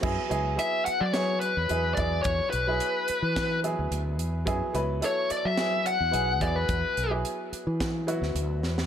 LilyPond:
<<
  \new Staff \with { instrumentName = "Lead electric guitar" } { \time 4/4 \key e \mixolydian \tempo 4 = 108 r4 e''8 fis''16 d''16 cis''8 b'4 d''8 | cis''8 b'2 r4. | r4 cis''8 d''16 e''8. fis''4 d''16 b'16~ | b'8. r2. r16 | }
  \new Staff \with { instrumentName = "Grand piano" } { \time 4/4 \key e \mixolydian <fis b e' gis'>8 <fis b e' gis'>8 <fis b e' gis'>4 <fis b e' gis'>4 <fis b e' gis'>8 <fis b e' gis'>8~ | <fis b e' gis'>8. <fis b e' gis'>4.~ <fis b e' gis'>16 <fis b e' gis'>4. | <fis b e' gis'>8 <fis b e' b'>8 <fis b e' a'>4 <fis b e' gis'>4 <fis b e' gis'>8 <fis b e' gis'>8~ | <fis b e' gis'>8. <fis b e' gis'>4.~ <fis b e' gis'>16 <fis b e' fis'>4. | }
  \new Staff \with { instrumentName = "Fretless electric bass" } { \clef bass \time 4/4 \key e \mixolydian fis,16 r16 cis,8 r8. fis4 e,16 e,8 e,8 | e,16 r16 b,,8 r8. e4 d,16 d,8 e,8 | fis,16 r16 cis,8 r8. fis4 e,16 b,,8 e,8 | e,16 r16 b,,8 r8. e4 d,16 d,8 e,8 | }
  \new DrumStaff \with { instrumentName = "Drums" } \drummode { \time 4/4 <cymc bd>8 hh8 hh8 hh8 <hh sn>8 hh8 hh8 <hh bd>8 | <hh bd>8 hh8 hh8 hh8 <hh bd sn>8 hh8 hh8 hh8 | <hh bd>8 hh8 hh8 hh8 <hh sn>8 hh8 hh8 <hh bd>8 | <hh bd>8 hh8 hh8 hh8 <hh bd sn>8 hh16 sn16 hh8 sn16 sn16 | }
>>